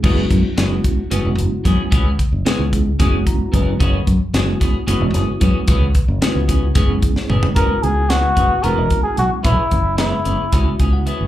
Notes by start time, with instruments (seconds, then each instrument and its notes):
0.03 fingered electric bass F#1, clean electric guitar E3 B3 C#4 G#4, tine electric piano G#3 B3 C#4 E4 F#4, kick, crash
0.30 fingered electric bass F#2, kick, closed hi-hat
0.44 muted fingered electric bass stroke
0.57 fingered electric bass F#1, clean electric guitar E3 B3 C#4 G#4, tine electric piano G#3 B3 C#4 E4 F#4, snare, closed hi-hat
0.84 kick, closed hi-hat
0.98 muted fingered electric bass stroke
1.10 fingered electric bass F#1, clean electric guitar E3 B3 C#4 G#4, tine electric piano G#3 B3 C#4 E4 F#4, closed hi-hat
1.25 fingered electric bass E1
1.38 fingered electric bass F#1, closed hi-hat
1.64 fingered electric bass F#2, clean electric guitar E3 B3 C#4 G#4, kick, snare, closed hi-hat
1.91 fingered electric bass C#2, clean electric guitar E3 B3 C#4 G#4, kick, closed hi-hat
2.05 fingered electric bass C#2
2.19 kick, closed hi-hat
2.32 fingered electric bass F#1
2.45 clean electric guitar E3 B3 C#4 G#4, tine electric piano G#3 B3 C#4 E4 G#4, snare, closed hi-hat
2.59 fingered electric bass C#2
2.73 kick, closed hi-hat
2.99 fingered electric bass F#1, clean electric guitar E3 B3 C#4 G#4, tine electric piano G#3 B3 C#4 E4 F#4, kick, snare, closed hi-hat
3.27 tine electric piano A#5, kick, closed hi-hat
3.40 muted fingered electric bass stroke
3.52 fingered electric bass F#1, clean electric guitar E3 B3 C#4 G#4, kick, closed hi-hat
3.79 fingered electric bass F#1, clean electric guitar E3 B3 C#4 G#4, kick, closed hi-hat
4.07 fingered electric bass F#2, kick, closed hi-hat
4.21 muted fingered electric bass stroke
4.34 fingered electric bass F#1, clean electric guitar E3 B3 C#4 G#4, tine electric piano G#3 B3 C#4 E4 F#4, snare, closed hi-hat
4.60 clean electric guitar B3 C#4 G#4, kick, snare, closed hi-hat
4.74 muted fingered electric bass stroke
4.87 fingered electric bass F#1, clean electric guitar E3 B3 C#4 G#4, tine electric piano G#3 B3 C#4 E4 F#4, closed hi-hat
5.01 fingered electric bass E1
5.14 fingered electric bass F#1, clean electric guitar B3 C#4 G#4, snare, closed hi-hat
5.40 fingered electric bass F#2, clean electric guitar E3 B3 C#4 G#4, kick, closed hi-hat
5.67 fingered electric bass C#2, clean electric guitar E3 B3 C#4 G#4, kick, closed hi-hat
5.81 fingered electric bass C#2
5.95 kick, closed hi-hat
6.08 fingered electric bass F#1
6.21 clean electric guitar E3 B3 C#4 G#4, tine electric piano G#3 B3 C#4 E4 F#4, snare, closed hi-hat
6.35 fingered electric bass C#2
6.48 clean electric guitar B3 C#4 G#4, kick, closed hi-hat
6.75 fingered electric bass F#1, clean electric guitar E3 B3 C#4 G#4, tine electric piano G#3 B3 C#4 E4 G#4, kick, closed hi-hat
7.02 kick, closed hi-hat
7.16 muted fingered electric bass stroke, snare
7.29 fingered electric bass F#1, clean electric guitar E3 B3 C#4 G#4, mid tom
7.43 floor tom
7.55 fingered electric bass F#1, clean electric guitar E3 B3 C#4 G#4, tine electric piano G#3 B3 C#4 E4 F#4, muted trumpet A#4, kick, closed hi-hat
7.70 muted fingered electric bass stroke
7.82 fingered electric bass C#2, muted trumpet G#4, closed hi-hat
8.09 clean electric guitar E3 B3 C#4 G#4, tine electric piano G#3 B3 C#4 E4 F#4, muted trumpet F#4, snare, closed hi-hat
8.35 fingered electric bass F#1, clean electric guitar B3 C#4 G#4, kick, closed hi-hat
8.63 fingered electric bass E1, clean electric guitar E3 B3 C#4 G#4, tine electric piano G#3 B3 C#4 E4 F#4, muted trumpet A#4, closed hi-hat
8.78 fingered electric bass E1
8.90 kick, closed hi-hat
9.03 muted trumpet G#4, muted fingered electric bass stroke
9.17 fingered electric bass B1, muted trumpet F#4, closed hi-hat
9.31 muted fingered electric bass stroke
9.43 fingered electric bass B1, clean electric guitar E3 B3 C#4 G#4, muted trumpet E4, kick, closed hi-hat
9.71 fingered electric bass F#1, kick, closed hi-hat
9.97 clean electric guitar E3 B3 C#4 G#4, tine electric piano G#3 B3 C#4 E4 G#4, muted trumpet E4, snare, closed hi-hat
10.24 fingered electric bass F#1, clean electric guitar B3 C#4 G#4, closed hi-hat
10.52 fingered electric bass C#2, clean electric guitar E3 B3 C#4 G#4, tine electric piano G#3 B3 C#4 E4 F#4, kick, closed hi-hat
10.66 muted fingered electric bass stroke
10.79 fingered electric bass C#2, clean electric guitar B3 C#4 G#4, tine electric piano G#5, kick, closed hi-hat
10.93 tine electric piano F#5
11.06 clean electric guitar E3 B3 C#4 G#4, tine electric piano E5, closed hi-hat
11.21 fingered electric bass F#1